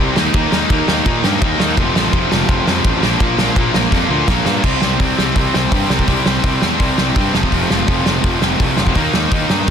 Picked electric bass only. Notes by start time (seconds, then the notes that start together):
0.00 C2
0.17 D#2
0.34 D#2
0.53 D#2
0.70 D#2
0.89 D#2
1.06 A#2
1.24 G2
1.42 D#2
1.59 D#2
1.77 F1
1.96 A1
2.13 F1
2.32 F1
2.49 F1
2.67 F2
2.84 A1
3.03 A#1
3.20 A#1
3.38 A#1
3.56 A#1
3.75 A#1
3.92 F2
4.10 D2
4.28 A#1
4.46 G2
4.64 C2
4.83 C2
5.00 C2
5.19 C2
5.36 C2
5.54 C2
5.72 G2
5.90 C2
6.08 C2
6.26 C2
6.44 C2
6.63 E2
6.80 C2
6.99 C2
7.16 G2
7.35 F1
7.52 F1
7.71 F1
7.88 F1
8.06 F1
8.24 F1
8.42 F1
8.60 C2
8.78 F1
8.96 D#2
9.14 D#2
9.32 D#2
9.50 G2